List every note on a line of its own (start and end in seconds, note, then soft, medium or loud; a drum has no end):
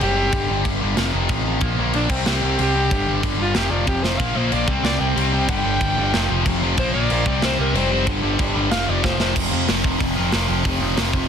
0.00 0.30 F#1 medium
0.00 0.15 C3 medium
0.00 0.15 G3 medium
0.00 0.16 C4 medium
0.00 0.65 G4 loud
0.00 crash medium
0.16 0.32 C3 medium
0.16 0.32 G3 medium
0.16 0.32 C4 medium
0.32 0.48 G1 medium
0.32 0.49 G2 medium
0.32 0.48 D3 medium
0.32 0.47 G3 medium
0.32 kick loud
0.32 crash medium
0.49 0.64 G1 medium
0.49 0.63 G2 medium
0.49 0.64 D3 medium
0.49 0.64 G3 medium
0.65 0.80 G1 medium
0.65 0.81 G2 medium
0.65 0.81 D3 medium
0.65 0.80 G3 medium
0.65 kick medium
0.65 crash medium
0.81 0.97 G1 medium
0.81 0.96 G2 medium
0.81 0.96 D3 medium
0.81 0.97 G3 loud
0.96 1.12 F1 loud
0.96 1.14 F2 medium
0.96 1.13 C3 loud
0.96 1.12 F3 loud
0.96 snare loud
0.96 crash medium
1.13 1.28 F1 medium
1.13 1.28 F2 medium
1.13 1.29 C3 medium
1.13 1.29 F3 loud
1.29 1.59 A1 medium
1.29 1.46 F2 medium
1.29 1.46 C3 medium
1.29 1.45 F3 medium
1.29 kick medium
1.29 crash medium
1.46 1.62 F2 medium
1.46 1.62 C3 medium
1.46 1.61 F3 medium
1.61 1.76 A#1 medium
1.61 1.78 A#2 medium
1.61 1.78 F3 medium
1.61 1.77 A#3 loud
1.61 kick loud
1.61 crash medium
1.78 1.93 A#1 medium
1.78 1.92 A#2 medium
1.78 1.92 F3 medium
1.78 1.93 A#3 loud
1.93 2.09 A#1 medium
1.93 2.09 A#2 medium
1.93 2.09 F3 medium
1.93 2.10 A#3 medium
1.93 2.12 D4 loud
1.93 crash medium
2.09 2.24 C2 loud
2.09 2.27 C3 loud
2.09 2.26 G3 loud
2.09 2.30 C4 medium
2.09 2.26 C4 medium
2.09 kick medium
2.09 crash medium
2.26 2.41 C2 medium
2.26 2.41 C3 medium
2.26 2.41 G3 medium
2.26 2.42 C4 loud
2.26 2.59 G4 medium
2.26 snare loud
2.26 crash medium
2.42 2.58 C2 medium
2.42 2.58 C3 medium
2.42 2.58 G3 medium
2.42 2.57 C4 medium
2.58 2.88 C2 medium
2.58 2.73 C3 medium
2.58 2.74 G3 medium
2.58 2.75 C4 medium
2.58 3.23 G4 loud
2.58 crash medium
2.75 2.90 C3 medium
2.75 2.91 G3 medium
2.75 2.91 C4 medium
2.91 3.06 G1 medium
2.91 3.07 G2 medium
2.91 3.07 D3 loud
2.91 3.07 G3 medium
2.91 kick loud
2.91 crash medium
3.08 3.22 G1 medium
3.08 3.21 G2 medium
3.08 3.22 D3 medium
3.08 3.22 G3 loud
3.22 3.38 G1 medium
3.22 3.37 G2 medium
3.22 3.37 D3 medium
3.22 3.37 G3 medium
3.22 kick medium
3.22 crash medium
3.38 3.53 G1 loud
3.38 3.54 G2 medium
3.38 3.54 D3 medium
3.38 3.54 G3 medium
3.38 3.58 F4 loud
3.55 3.70 F1 loud
3.55 3.70 F2 medium
3.55 3.70 C3 loud
3.55 3.69 F3 loud
3.55 3.72 G4 medium
3.55 snare loud
3.55 crash medium
3.70 3.86 F1 medium
3.70 3.86 F2 medium
3.70 3.86 C3 medium
3.70 3.87 F3 medium
3.70 3.87 D5 medium
3.87 4.17 F1 medium
3.87 4.03 F2 medium
3.87 4.03 C3 medium
3.87 4.03 F3 medium
3.87 4.05 G4 loud
3.87 kick medium
3.87 crash medium
4.03 4.20 F2 medium
4.03 4.19 C3 medium
4.03 4.19 F3 medium
4.03 4.20 C5 medium
4.03 snare medium
4.18 4.34 A#1 medium
4.18 4.36 A#2 medium
4.18 4.35 F3 medium
4.18 4.34 A#3 medium
4.18 4.38 F5 medium
4.18 kick loud
4.18 crash medium
4.35 4.50 A#1 medium
4.35 4.52 A#2 medium
4.35 4.52 F3 medium
4.35 4.52 A#3 medium
4.35 4.54 C5 medium
4.52 4.67 A#1 medium
4.52 4.68 A#2 medium
4.52 4.68 F3 medium
4.52 4.68 A#3 medium
4.52 4.68 D5 medium
4.52 crash medium
4.67 4.83 C2 medium
4.67 4.83 C3 loud
4.67 4.83 G3 medium
4.67 4.82 C4 loud
4.67 kick loud
4.83 4.98 C2 medium
4.83 4.98 C3 medium
4.83 4.99 G3 medium
4.83 4.99 C4 loud
4.83 5.02 D5 medium
4.83 snare loud
4.83 crash soft
4.99 5.15 C2 medium
4.99 5.15 C3 medium
4.99 5.15 G3 medium
4.99 5.15 C4 medium
4.99 5.16 G5 medium
5.16 5.45 C2 medium
5.16 5.31 C3 medium
5.16 5.32 G3 medium
5.16 5.32 C4 medium
5.16 crash medium
5.20 5.50 C4 medium
5.33 5.48 C3 medium
5.33 5.49 G3 medium
5.33 5.48 C4 medium
5.33 5.49 G5 medium
5.48 5.63 G1 medium
5.48 5.65 G2 medium
5.48 5.65 D3 medium
5.48 5.64 G3 loud
5.48 6.43 G5 loud
5.48 kick loud
5.48 crash medium
5.64 5.79 G1 medium
5.64 5.80 G2 medium
5.64 5.81 D3 medium
5.64 5.81 G3 loud
5.81 5.96 G1 medium
5.81 5.98 G2 medium
5.81 5.97 D3 medium
5.81 5.96 G3 medium
5.81 kick medium
5.81 crash medium
5.98 6.12 G1 loud
5.98 6.13 G2 medium
5.98 6.13 D3 medium
5.98 6.13 G3 medium
6.14 6.29 F1 loud
6.14 6.30 F2 medium
6.14 6.30 C3 loud
6.14 6.29 F3 loud
6.14 snare loud
6.14 crash medium
6.30 6.44 F1 medium
6.30 6.45 F2 medium
6.30 6.46 C3 medium
6.30 6.46 F3 medium
6.46 6.75 F1 medium
6.46 6.63 F2 medium
6.46 6.62 C3 medium
6.46 6.62 F3 medium
6.46 kick medium
6.46 crash medium
6.63 6.78 F2 medium
6.63 6.77 C3 medium
6.63 6.76 F3 medium
6.77 6.92 A#1 medium
6.77 6.95 A#2 medium
6.77 6.94 F3 medium
6.77 6.94 A#3 loud
6.77 6.93 C5 loud
6.77 kick loud
6.77 crash medium
6.94 7.09 A#1 medium
6.94 7.09 A#2 medium
6.94 7.10 F3 medium
6.94 7.10 A#3 loud
6.94 7.41 D5 loud
7.10 7.25 A#1 medium
7.10 7.26 A#2 medium
7.10 7.26 F3 medium
7.10 7.26 A#3 medium
7.10 crash medium
7.26 7.41 C2 loud
7.26 7.43 C3 medium
7.26 7.43 G3 loud
7.26 7.43 C4 medium
7.26 kick medium
7.42 7.57 C2 loud
7.42 7.57 C3 medium
7.42 7.58 G3 medium
7.42 7.58 C4 loud
7.42 7.59 C5 loud
7.42 snare loud
7.42 crash soft
7.59 7.73 C2 medium
7.59 7.74 C3 medium
7.59 7.75 G3 loud
7.59 7.73 C4 medium
7.59 7.79 A#4 medium
7.74 8.06 F1 medium
7.74 7.90 C3 medium
7.74 7.91 G3 medium
7.74 7.91 C4 loud
7.74 8.07 C5 loud
7.74 crash medium
7.91 8.06 C3 medium
7.91 8.06 G3 medium
7.91 8.06 C4 medium
8.06 8.21 G1 medium
8.06 8.23 G2 medium
8.06 8.22 D3 loud
8.06 8.21 G3 loud
8.06 kick loud
8.06 crash medium
8.22 8.37 G1 loud
8.22 8.38 G2 medium
8.22 8.38 D3 loud
8.22 8.39 G3 loud
8.39 8.54 G1 medium
8.39 8.55 G2 medium
8.39 8.55 D3 medium
8.39 8.54 G3 medium
8.39 kick medium
8.39 crash medium
8.55 8.72 G1 loud
8.55 8.70 G2 medium
8.55 8.70 D3 medium
8.55 8.70 G3 medium
8.70 8.86 F1 medium
8.70 8.87 F2 medium
8.70 8.87 C3 loud
8.70 8.86 F3 medium
8.70 8.91 F5 loud
8.70 snare medium
8.70 crash medium
8.87 9.02 F1 medium
8.87 9.01 F2 medium
8.87 9.02 C3 loud
8.87 9.02 F3 loud
8.87 9.04 D5 medium
9.02 9.33 F1 loud
9.02 9.19 F2 medium
9.02 9.18 C3 medium
9.02 9.17 F3 medium
9.02 9.20 C5 medium
9.02 kick medium
9.02 snare medium
9.19 9.33 F2 medium
9.19 9.34 C3 medium
9.19 9.34 F3 loud
9.19 9.36 C5 medium
9.19 snare medium
9.24 9.35 F2 medium
9.34 9.51 F1 loud
9.34 9.51 F2 medium
9.34 9.49 C3 loud
9.34 9.50 F3 loud
9.34 kick loud
9.34 crash loud
9.40 10.15 F3 loud
9.50 9.66 F2 medium
9.50 9.68 F2 medium
9.50 9.66 C3 medium
9.50 9.67 F3 loud
9.67 9.84 F1 loud
9.67 9.83 F2 medium
9.67 9.82 C3 medium
9.67 9.83 F3 loud
9.67 snare loud
9.67 open hi-hat medium
9.83 9.99 F1 loud
9.83 9.97 F2 medium
9.83 9.98 C3 medium
9.83 9.98 F3 medium
9.83 kick medium
9.98 10.15 F1 loud
9.98 10.15 F2 medium
9.98 10.15 C3 loud
9.98 10.14 F3 loud
9.98 kick loud
9.98 open hi-hat medium
10.15 10.32 F1 medium
10.15 10.31 F2 medium
10.15 10.31 C3 loud
10.15 10.32 F3 loud
10.32 10.48 F1 medium
10.32 10.48 F2 medium
10.32 10.47 C3 medium
10.32 10.47 F3 loud
10.32 snare loud
10.32 open hi-hat medium
10.37 10.66 F3 medium
10.48 10.64 F1 loud
10.48 10.63 F2 medium
10.48 10.63 C3 medium
10.48 10.63 F3 medium
10.64 10.80 F1 medium
10.64 10.81 F2 medium
10.64 10.81 C3 medium
10.64 10.80 F3 loud
10.64 kick loud
10.64 open hi-hat medium
10.68 11.28 C3 loud
10.68 11.28 F3 loud
10.81 10.96 F1 loud
10.81 10.95 F2 medium
10.81 10.95 C3 medium
10.81 10.96 F3 loud
10.96 11.12 F1 loud
10.96 11.13 F2 medium
10.96 11.13 C3 medium
10.96 11.12 F3 medium
10.96 snare loud
10.96 open hi-hat medium
11.13 11.28 F1 loud
11.13 11.28 F2 medium
11.13 11.28 C3 medium
11.13 11.28 F3 loud
11.13 kick medium